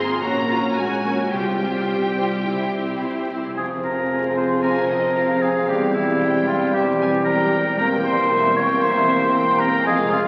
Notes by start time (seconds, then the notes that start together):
Already playing: G#1 G#2 G#3 C4 F4 G#4 C5 C6
0.05 G#4
0.22 A#1 A#2 A#3 C#4 F#4 A#4 A#5
0.41 A#3
0.48 C#4 F4 F#4 A#4
0.59 F#4
0.76 A#1 G#3 C#4 F#4 G#5
0.96 C#5
1.03 C#4 F#4 A#4
1.15 F#4
1.31 C2 C3 G3 C4 F4 G4 C5 G5
1.52 G3
1.60 C4 F4 G4 C5
1.71 F4
1.90 C2 G4
2.09 C5
2.17 C4 F4 G4 C5
2.28 G4
2.45 C2 C3 C4 E4 G4 C5
2.65 G3
2.73 C4 E4 G4 C5
2.83 E4
3.02 C2 G4
3.21 C5
3.29 C4 E4 G4 C5
3.41 G4
3.55 F1 F2 F3 C4 F4 G#4 G#5
3.76 C3
3.84 A#4 A#5
3.95 F4
4.11 G#4
4.29 C5
4.37 C5 C6
4.47 G#4
4.62 F2 A#4 G#5 A#5
4.82 C3
4.90 D#5
4.99 F4
5.15 G#4 F5
5.33 C5
5.42 G#4 G#5
5.51 G#4
5.68 E1 E2 G3 C4 G4 G5
5.87 E3
5.93 E4 E5
6.05 G4
6.22 C5 G5
6.40 G4
6.47 F4 F5
6.57 C5
6.73 E2 G3 C4 G4 E5 G5
6.92 E3
7.01 G#5
7.09 G4
7.25 A#4 C5 G5 A#5
7.44 G4
7.62 C5
7.78 E2 A#3 C4 A#4 G5 A#5
7.97 E3
8.04 C5 C6
8.15 G4
8.31 A#4 E5
8.48 C5
8.56 C#5 G5 C#6
8.66 A#4
8.82 E2 A#3 C4 C5 E5 C6
9.00 E3
9.16 G4
9.34 A#4 G5
9.51 C5
9.58 A#4 A#5
9.67 A#4
9.84 F1 F2 G#3 C4 F4 G#4 G#5
9.88 F5
10.03 C3
10.11 F4 F5
10.20 F4